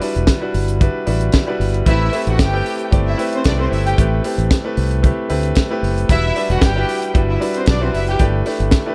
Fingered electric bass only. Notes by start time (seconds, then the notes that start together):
0.16 E1
0.54 G1
1.07 A1
1.60 G1
1.87 A1
2.27 A1
2.40 G1
2.92 G1
3.46 C2
3.72 G1
3.98 A1
4.38 A1
4.77 C2
5.30 D2
5.83 F#1
6.09 E1
6.50 E1
6.62 G1
7.15 G1
7.67 B1
7.94 F#1
8.20 G1
8.60 G1